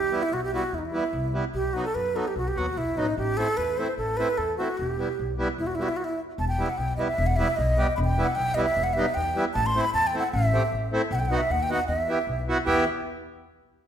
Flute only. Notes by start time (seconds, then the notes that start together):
Already playing: G4
0.23 E4
0.33 F#4
0.44 G4
0.55 F#4
0.74 D#4 E4
0.85 E4
1.54 G4
1.73 F#4
1.85 A4
1.95 B4
2.16 A4
2.28 G4
2.38 F#4
2.48 G4
2.58 F#4
2.78 E4
2.97 D#4
3.18 G4
3.37 A4
3.57 B4
3.77 C5
3.98 A4
4.17 B4
4.38 A4
4.58 F#4
4.77 G4
5.59 E4
5.67 F#4
5.75 E4
5.82 F#4
5.89 E4
5.97 F#4
6.04 E4
6.39 A5
6.48 G5
6.66 F#5 G5
6.78 G5
6.97 D#5
7.06 E5
7.26 F#5
7.36 E5
7.56 D#5
7.96 B5
8.05 G5
8.25 F#5
8.35 G5
8.54 D#5
8.65 E5
8.84 F#5
8.93 E5
9.14 G5
9.54 A5
9.66 C6
9.81 B5
9.94 A5
10.07 G5
10.19 F#5
10.33 E5
11.12 F#5 G5
11.19 G5
11.25 F#5
11.38 E5
11.51 F#5
11.63 G5
11.74 F#5
11.88 E5
12.67 E5